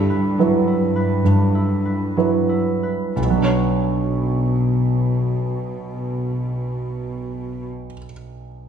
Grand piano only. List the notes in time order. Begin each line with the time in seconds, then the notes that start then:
Already playing: G2
0.39 F#3 E4 B4
1.25 G2
2.17 F#3 E4 B4
3.16 B1
3.23 B2
3.30 F#3
3.38 D4
3.44 C#5